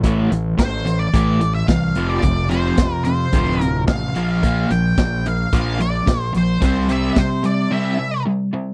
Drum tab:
HH |xxxxxxxx|xxxxxxxx|xxxxxxxx|xxxx----|
SD |--oo--o-|--o---o-|--o---o-|--o-----|
BD |o-o-o-o-|o-o-o-o-|o-o-o-o-|o-o-----|